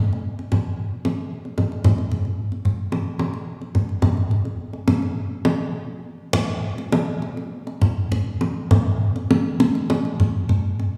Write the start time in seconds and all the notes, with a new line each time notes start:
0.13 kendang slap
0.39 kendang slap
0.52 kendang high, kendang low
1.05 kendang high
1.45 kendang slap
1.58 kendang high, kendang low
1.72 kendang slap
1.84 kendang high, kendang low
1.98 kendang slap
2.12 kendang low
2.25 kendang slap
2.52 kendang slap
2.65 kendang low
2.92 kendang high
3.19 kendang high
3.34 kendang slap
3.61 kendang slap
3.75 kendang high, kendang low
3.89 kendang slap
4.02 kendang high, kendang low
4.17 kendang slap
4.31 kendang low
4.45 kendang slap
4.73 kendang slap
4.88 kendang high, kendang low
5.02 kendang slap
5.45 kendang high
6.33 kendang low
6.78 kendang slap
6.92 kendang high
7.22 kendang slap
7.37 kendang slap
7.67 kendang slap
7.82 kendang low
8.12 kendang slap, kendang low
8.41 kendang slap, kendang high
8.71 kendang low
9.16 kendang slap
9.31 kendang high
9.60 kendang slap, kendang high
9.75 kendang slap
9.90 kendang high
10.05 kendang slap
10.20 kendang low
10.49 kendang slap, kendang low
10.80 kendang slap